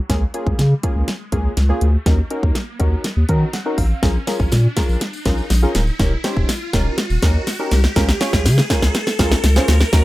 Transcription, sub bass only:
0.10 0.25 C#2 loud
0.47 0.54 C#2 loud
0.59 0.74 C#3 loud
0.96 1.03 C#2 medium
1.32 1.48 C#2 medium
1.57 1.73 C#2 medium
1.82 1.97 D2 medium
2.06 2.22 D#2 loud
2.43 2.51 D#2 loud
2.80 2.96 D#2 medium
3.17 3.25 D#2 loud
3.29 3.45 D#3 loud
3.78 3.94 A1 loud
4.03 4.18 A#1 loud
4.40 4.48 A#1 medium
4.52 4.68 A#2 loud
4.89 4.97 A#1 medium
5.26 5.41 A#1 medium
5.50 5.66 A#1 loud
5.75 5.91 D1 medium
6.00 6.15 D#1 loud
6.37 6.44 D#1 loud
6.74 6.89 D#1 medium
7.10 7.18 D#1 loud
7.22 7.38 D#2 loud
7.72 7.87 C2 medium
7.96 8.12 C#2 loud
8.33 8.47 C#2 loud
8.45 8.61 C#3 loud
8.82 8.90 C#2 loud
9.19 9.35 C#2 medium
9.44 9.59 C#2 loud
9.68 9.84 D2 medium
9.93 10.04 D#2 loud

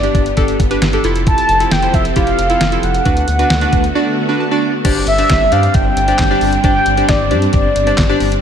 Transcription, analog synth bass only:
0.15 0.30 G1 loud
0.37 0.53 G1 loud
0.60 0.75 G1 loud
0.82 0.97 G1 loud
1.04 1.36 F1 loud
1.49 1.65 F1 loud
1.71 1.87 F1 loud
1.94 2.09 F1 loud
2.16 2.32 F1 loud
2.39 2.54 F1 loud
2.61 2.77 F1 loud
2.83 2.99 F1 loud
3.06 3.21 D2 loud
3.28 3.44 D2 loud
3.50 3.66 D2 loud
3.73 3.88 D2 loud
4.85 5.00 G1 loud
5.07 5.23 G1 loud
5.30 5.45 G1 loud
5.52 5.68 G2 loud
5.74 5.90 G1 loud
5.96 6.12 G1 loud
6.19 6.35 G1 loud
6.41 6.57 G1 loud
6.64 6.80 G1 loud
6.86 7.02 G1 loud
7.09 7.32 G1 loud
7.31 7.47 G2 loud
7.53 7.69 G1 loud
7.76 7.92 G1 medium
7.98 8.14 G1 loud
8.21 8.36 G1 loud

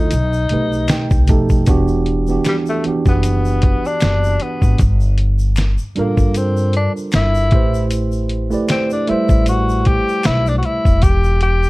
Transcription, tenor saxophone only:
0.00 1.30 D#4 medium
2.48 2.57 G3 medium
2.69 2.85 A3 medium
3.08 3.88 B3 medium
3.87 4.44 D4 loud
4.42 4.80 B3 medium
5.99 6.39 A#3 medium
6.37 6.75 C4 medium
6.76 6.92 D4 medium
7.15 7.88 E4 loud
8.71 8.90 C4 medium
8.93 9.10 D4 medium
9.09 9.47 E4 medium
9.49 9.89 F#4 loud
9.87 10.28 G4 loud
10.26 10.49 E4 loud
10.48 10.58 D4 loud
10.58 10.67 F#4 medium
10.65 11.05 E4 medium
11.04 11.42 G4 loud
11.43 11.70 G4 medium

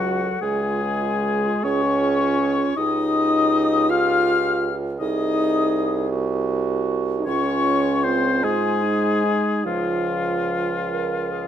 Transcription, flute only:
0.00 0.45 F#5 medium
0.43 1.64 G#5 medium
1.65 2.79 C#6 medium
2.78 3.91 D#6 medium
3.90 4.75 F6 medium
5.00 6.07 D#6 medium
7.26 8.05 C#6 medium
8.04 8.45 C6 medium
8.43 9.65 G#5 medium
9.65 11.47 F5 medium

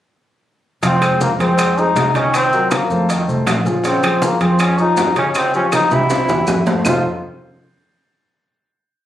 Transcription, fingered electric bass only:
0.83 1.35 F1 medium
1.39 1.91 F2 medium
1.95 2.84 C2 medium
2.90 3.25 F2 medium
3.28 3.45 C2 medium
3.47 4.35 A#1 medium
4.41 4.93 F2 medium
4.97 5.85 G2 medium
5.91 6.26 C2 medium
6.29 6.46 E2 medium
6.47 6.81 F2 medium
6.85 7.03 F1 loud

